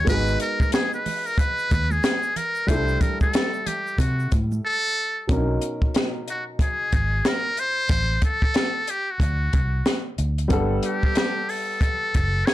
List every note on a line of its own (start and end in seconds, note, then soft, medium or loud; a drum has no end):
0.05 0.35 G#1 loud
0.05 2.63 G#3 medium
0.05 2.64 B3 medium
0.05 2.64 D#4 medium
0.05 2.65 F#4 medium
0.05 0.38 B4 loud
0.05 kick loud
0.05 closed hi-hat loud
0.05 shaker medium
0.10 2.65 G#4 medium
0.28 shaker medium
0.40 0.71 A#4 loud
0.40 closed hi-hat medium
0.40 shaker soft
0.60 kick medium
0.60 high conga medium
0.60 shaker soft
0.72 0.92 G#4 loud
0.72 snare loud
0.72 closed hi-hat medium
0.72 shaker medium
0.93 1.28 B4 medium
0.93 shaker soft
1.06 open hi-hat medium
1.06 high conga soft
1.06 low conga medium
1.06 shaker soft
1.26 1.40 A#4 loud
1.26 shaker soft
1.38 1.93 B4 loud
1.38 kick loud
1.38 closed hi-hat medium
1.38 shaker medium
1.58 shaker soft
1.71 1.99 D#2 loud
1.71 kick loud
1.71 closed hi-hat medium
1.71 high conga medium
1.71 shaker medium
1.91 2.38 G#4 medium
1.91 high conga medium
1.91 shaker soft
2.03 snare loud
2.03 closed hi-hat medium
2.03 shaker medium
2.23 shaker medium
2.36 2.70 A#4 loud
2.36 closed hi-hat medium
2.36 low conga medium
2.36 shaker soft
2.55 shaker soft
2.67 2.96 C2 loud
2.67 5.24 G3 medium
2.67 5.25 A3 medium
2.67 5.25 D4 medium
2.67 5.26 E4 medium
2.67 3.03 C5 loud
2.67 kick loud
2.67 closed hi-hat loud
2.67 shaker medium
2.71 5.27 A4 medium
2.88 shaker medium
3.01 3.21 A#4 medium
3.01 kick loud
3.01 closed hi-hat medium
3.01 low conga medium
3.01 shaker medium
3.21 3.68 A4 medium
3.21 kick medium
3.21 high conga medium
3.21 shaker soft
3.33 snare loud
3.33 closed hi-hat medium
3.33 shaker medium
3.53 shaker soft
3.67 4.01 G4 medium
3.67 closed hi-hat medium
3.67 high conga soft
3.67 low conga medium
3.67 shaker soft
3.87 shaker soft
3.98 4.26 C3 loud
3.98 4.32 F#4 medium
3.98 kick loud
3.98 closed hi-hat medium
3.98 shaker medium
4.19 shaker soft
4.32 4.59 A2 medium
4.32 kick loud
4.32 closed hi-hat medium
4.32 high conga soft
4.32 shaker medium
4.52 high conga medium
4.52 shaker soft
4.65 5.26 A4 loud
5.27 5.57 B1 medium
5.27 7.86 B2 medium
5.27 7.85 F#3 medium
5.27 7.86 C#4 medium
5.27 5.38 D4 soft
5.27 kick loud
5.27 closed hi-hat medium
5.32 7.88 A#4 medium
5.37 7.90 D#4 medium
5.61 closed hi-hat medium
5.82 kick medium
5.94 snare loud
5.94 closed hi-hat medium
6.28 6.44 F#4 medium
6.28 closed hi-hat medium
6.59 7.29 G#4 loud
6.59 kick loud
6.59 closed hi-hat medium
6.92 7.20 G#1 medium
6.92 kick medium
6.92 closed hi-hat medium
7.25 7.61 A#4 loud
7.25 snare loud
7.25 closed hi-hat medium
7.57 8.24 C5 loud
7.57 closed hi-hat medium
7.89 8.17 A1 medium
7.89 kick loud
7.89 closed hi-hat medium
8.22 8.92 A4 loud
8.22 kick medium
8.22 closed hi-hat medium
8.42 kick medium
8.54 snare loud
8.54 closed hi-hat medium
8.87 9.12 G4 medium
8.87 closed hi-hat medium
9.11 10.07 F#4 medium
9.20 9.48 D2 loud
9.20 kick medium
9.20 closed hi-hat medium
9.53 9.81 C2 medium
9.53 kick medium
9.53 closed hi-hat medium
9.86 snare loud
9.86 closed hi-hat medium
10.18 10.46 D2 medium
10.18 closed hi-hat medium
10.38 closed hi-hat soft
10.48 10.78 G1 loud
10.48 12.54 G3 medium
10.48 12.54 B3 medium
10.48 12.54 D4 medium
10.48 12.54 F#5 medium
10.48 kick loud
10.48 closed hi-hat medium
10.53 12.54 A4 medium
10.83 11.51 G4 medium
10.83 closed hi-hat medium
11.03 kick medium
11.15 snare loud
11.15 closed hi-hat medium
11.49 12.47 A4 loud
11.49 open hi-hat soft
11.81 kick loud
11.81 closed hi-hat medium
12.14 12.42 F#1 medium
12.14 kick medium
12.14 closed hi-hat medium
12.46 12.54 C#5 loud
12.46 snare loud
12.46 closed hi-hat medium